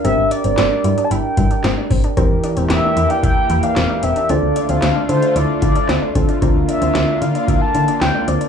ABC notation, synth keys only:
X:1
M:4/4
L:1/8
Q:1/4=113
K:Dm
V:1 name="Synth keys"
[DGB]8 | [E,GB]8 | [DFA]6- [DFA] [DFA] | [DFB]8 |]